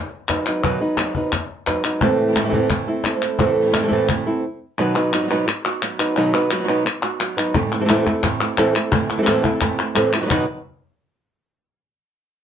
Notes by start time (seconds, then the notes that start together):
0.29 F#3 B3 D#4 B4, cajon bass, cajon slap, clap
0.46 F#3 B3 D#4 B4, clap
0.63 B2 D#3 F#3 B3 D#4 B4, cajon bass
0.81 F#3 B3 D#4 B4
0.97 F#3 B3 D#4 B4, cajon slap, clap
1.15 F#3 B3 D#4 B4, cajon bass
1.32 muted nylon-string guitar stroke, cajon bass, cajon slap, clap
1.50 cajon slap
1.67 F#3 B3 D#4 B4, cajon bass, cajon slap, clap
1.84 F#3 B3 D#4 B4, clap
2.01 A2 E3 A3 C4 E4 A4, muted nylon-string guitar stroke, cajon bass
2.28 E3 A3 C4 E4
2.32 E3 A3 C4 E4 A4, cajon slap, clap
2.37 A2 E3 A3 C4 E4
2.44 E3 A3 C4 E4 A4
2.49 A3 C4 E4 A4, cajon bass
2.53 A2 E3 A3 C4 E4 A4
2.70 A2 E3 A3 C4 E4, muted nylon-string guitar stroke, cajon bass, clap
2.88 A3 C4 E4 A4, cajon slap
3.04 A3 C4 E4 A4, muted nylon-string guitar stroke, cajon slap, clap
3.22 A3 C4 E4, clap
3.39 A2 E3 A3 C4 E4 A4, muted nylon-string guitar stroke, cajon bass
3.61 E3 A3 C4 E4
3.65 E3 A3 C4 E4
3.70 E3 A3 C4 E4, cajon slap
3.74 A2 E3 A3 C4 E4 A4, clap
3.78 E3 C4 E4 A4
3.83 E3 A3 C4 E4 A4
3.87 E3 A3 C4 E4 A4
3.91 A2 E3 A3 C4 E4 A4, cajon bass, cajon slap
4.08 A2 E3 A3 C4 E4, muted nylon-string guitar stroke, cajon bass, clap
4.26 A3 C4 E4 A4
4.78 B2 D#3 F#3 B3 D#4 F#4 B4
4.95 F#3 B3 D#4 B4
5.13 F#3 B3 D#4 F#4 B4, clap
5.22 F#3 B3 D#4 F#4
5.27 F#3 B3 D#4 F#4 B4
5.31 B2 F#3 B3 D#4 F#4
5.47 muted nylon-string guitar stroke, clap
5.66 B3 D#4 F#4
5.82 F#3 B3 D#4 F#4, clap
5.99 F#3 B3 D#4 B4, clap
6.16 B2 D#3 F#3 B3 D#4 F#4 B4
6.34 F#3 B3 D#4 B4
6.51 F#3 B3 D#4 F#4 B4, clap
6.59 F#3 B3 D#4 F#4
6.64 F#3 B3 D#4 F#4
6.68 B2 F#3 B3 D#4 F#4 B4
6.85 muted nylon-string guitar stroke, clap
7.03 B3 D#4 F#4
7.20 F#3 B3 D#4 F#4, clap
7.37 F#3 B3 D#4 B4, clap
7.54 A2 E3 A3 C4 E4, muted nylon-string guitar stroke, cajon bass
7.72 A3 C4 E4
7.80 E3 A3 C4 E4 A4
7.85 E3 A3 C4 E4 A4
7.89 A2 E3 A3 C4 E4 A4, muted nylon-string guitar stroke, cajon slap, clap
8.06 A3 C4 E4 A4, cajon bass, cajon slap
8.23 A2 E3 A3 C4 E4, muted nylon-string guitar stroke, cajon bass, cajon slap, clap
8.41 A3 C4 E4
8.57 A2 E3 A3 C4 E4 A4, muted nylon-string guitar stroke, cajon slap, clap
8.75 A3 C4 E4 A4, clap
8.92 A2 E3 A3 C4 E4, muted nylon-string guitar stroke, cajon bass
9.10 A3 C4 E4
9.17 E3 A3 C4 E4 A4
9.22 E3 A3 C4 E4 A4
9.27 A2 E3 A3 C4 E4 A4, muted nylon-string guitar stroke, cajon slap, clap
9.43 A3 C4 E4 A4, cajon bass
9.61 A2 E3 A3 C4 E4, muted nylon-string guitar stroke, cajon bass, cajon slap, clap
9.79 A3 C4 E4
9.95 A2 E3 A3 C4 E4 A4, muted nylon-string guitar stroke, cajon slap, clap
10.13 A3 C4 E4 A4, clap
10.17 D#3 F#3 B3 D#4 F#4
10.21 D#3 F#3 B3 D#4 F#4 B4
10.25 F#3 B3 D#4 F#4 B4
10.30 B2 D#3 F#3 B3 D#4 F#4 B4, cajon bass, clap